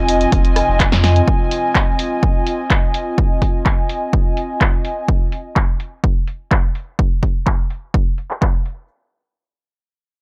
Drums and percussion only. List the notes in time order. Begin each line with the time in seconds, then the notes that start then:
0.09 open hi-hat
0.21 closed hi-hat
0.32 kick, closed hi-hat
0.45 closed hi-hat
0.56 cross-stick, open hi-hat
0.80 kick, clap, closed hi-hat
0.92 snare, closed hi-hat
1.04 snare, open hi-hat
1.16 closed hi-hat
1.28 kick
1.51 open hi-hat
1.75 kick, clap
1.99 open hi-hat
2.23 kick
2.47 open hi-hat
2.70 kick, clap
2.94 open hi-hat
3.18 kick
3.42 kick, open hi-hat
3.66 kick, clap
3.89 open hi-hat
4.13 kick
4.37 open hi-hat
4.61 kick, clap
4.85 open hi-hat
5.08 kick
5.32 open hi-hat
5.56 kick, clap
5.80 open hi-hat
6.04 kick
6.28 open hi-hat
6.51 kick, clap
6.75 open hi-hat
6.99 kick
7.23 kick, open hi-hat
7.47 kick, clap
7.70 open hi-hat
7.94 kick
8.18 open hi-hat
8.31 clap
8.42 kick, clap
8.66 open hi-hat